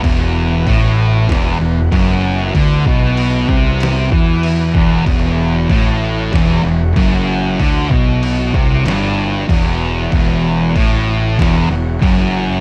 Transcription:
<<
  \new Staff \with { instrumentName = "Tonewheel organ" } { \time 4/4 \key e \dorian \tempo 4 = 95 b1~ | b1 | cis''1~ | cis''1~ |
cis''1 | }
  \new Staff \with { instrumentName = "Tonewheel organ" } { \time 4/4 \key e \dorian <e fis'>1~ | <e fis'>1~ | <e fis'>1~ | <e fis'>1~ |
<e fis'>1 | }
  \new Staff \with { instrumentName = "Distorted electric guitar" } { \clef bass \time 4/4 \key e \dorian e,4 a,4 e,8 e,8 fis,4 | d8 b,4 c4 e4 e,8 | e,4 a,4 e,8 e,8 fis,4 | d8 b,4 c8 g,4 e,4 |
e,4 a,4 e,8 e,8 fis,4 | }
  \new Staff \with { instrumentName = "Distorted electric guitar" } { \clef bass \time 4/4 \key e \dorian e,4 a,4 e,8 e,8 fis,4 | d8 b,4 c4 e4 e,8 | e,4 a,4 e,8 e,8 fis,4 | d8 b,4 c8 g,4 e,4 |
e,4 a,4 e,8 e,8 fis,4 | }
  \new Staff \with { instrumentName = "Fingered electric bass" } { \clef bass \time 4/4 \key e \dorian e,,4 a,,4 e,,8 e,,8 fis,,4 | d,8 b,,4 c,4 e,4 e,,8 | e,,4 a,,4 e,,8 e,,8 fis,,4 | d,8 b,,4 c,8 g,,4 e,,4 |
e,,4 a,,4 e,,8 e,,8 fis,,4 | }
  \new DrumStaff \with { instrumentName = "Drums" } \drummode { \time 4/4 <cymc bd>4 <cymc bd>4 <cymc bd sn>4 <cymc bd>4 | <cymc bd>8 bd8 cymc8 bd8 <cymc sn>8 bd8 cymc8 bd8 | <cymc bd>16 sn8. <cymc bd>4 <cymc bd sn>4 <cymc bd>4 | <cymc bd>16 sn16 bd8 cymc8 bd8 <cymc sn>4 <cymc bd>4 |
<cymc bd>4 <cymc bd>4 <cymc bd sn>4 <cymc bd>4 | }
>>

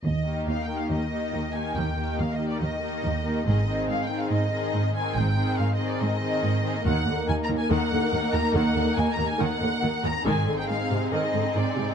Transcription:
<<
  \new Staff \with { instrumentName = "Violin section" } { \time 4/4 \key ees \major \tempo 4 = 141 ees''4 \tuplet 3/2 { f''8 g''8 f''8 } ees''4. aes''8 | g''4 \tuplet 3/2 { f''8 ees''8 d''8 } ees''2 | ees''4 \tuplet 3/2 { f''8 g''8 f''8 } ees''4. aes''8 | g''4 \tuplet 3/2 { f''8 ees''8 d''8 } ees''2 |
ges''4 \tuplet 3/2 { aes''8 bes''8 aes''8 } ges''4. bes''8 | ges''4 \tuplet 3/2 { aes''8 bes''8 aes''8 } ges''4. bes''8 | aes''8. g''16 f''4 ees''4 d''4 | }
  \new Staff \with { instrumentName = "Violin section" } { \time 4/4 \key ees \major r8 <ees' g'>4 <ees' g'>4 <ees' g'>4 <ees' g'>8~ | <ees' g'>8 <ees' g'>4 <ees' g'>4 <ees' g'>4 <ees' g'>8 | <ees' aes'>8 <ees' aes'>4 <ees' aes'>4 <ees' aes'>4 <ees' aes'>8~ | <ees' aes'>8 <ees' aes'>4 <ees' aes'>4 <ees' aes'>4 <ees' aes'>8 |
<ees' bes'>1~ | <ees' bes'>1 | <ees' aes'>1 | }
  \new Staff \with { instrumentName = "Viola section" } { \clef bass \time 4/4 \key ees \major << { r8 bes4 bes4 bes4 bes8~ | bes8 bes4 bes4 bes4 bes8 | c'8 c'4 c'4 c'4 c'8~ | c'8 c'4 c'4 c'4 c'8 |
bes1~ | bes1 | c'1 | } \\ { r8 ees4 ees4 ees4 ees8~ | ees8 ees4 ees4 ees4 ees8 | ees8 ees4 ees4 ees4 ees8~ | ees8 ees4 ees4 ees4 ees8 |
ees8 d8 ees8 ees8 ees8 d8 ees8 ees8 | ees8 d8 ees8 ees8 ees8 d8 ees8 ees8 | ees8 d8 ees8 c8 ees8 d8 ees8 c8 | } >> }
  \new Staff \with { instrumentName = "Cello section" } { \clef bass \time 4/4 \key ees \major ees,4 ees,4 ees,4 ees,4 | ees,4 ees,4 ees,4 ees,4 | aes,4 aes,4 aes,4 aes,4 | aes,4 aes,4 aes,4 aes,4 |
ees,8 ees,8 ees,8 ees,8 ees,8 ees,8 ees,8 ees,8 | ees,8 ees,8 ees,8 ees,8 ees,8 ees,8 ees,8 ees,8 | aes,8 aes,8 aes,8 aes,8 aes,8 aes,8 aes,8 aes,8 | }
  \new Staff \with { instrumentName = "Double bass section" } { \clef bass \time 4/4 \key ees \major ees,4 r2. | ees,4 r2. | aes,,4 r2. | aes,,4 r2. |
ees,8 r2. r8 | ees,8 r2. r8 | aes,,8 r2. r8 | }
>>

